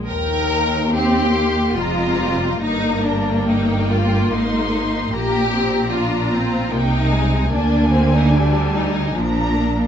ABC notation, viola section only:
X:1
M:3/4
L:1/8
Q:1/4=73
K:Eb
V:1 name="Viola section"
z2 C B, A, G, | B,6 | B, C D C B, A, | B,2 G,2 F, B, |]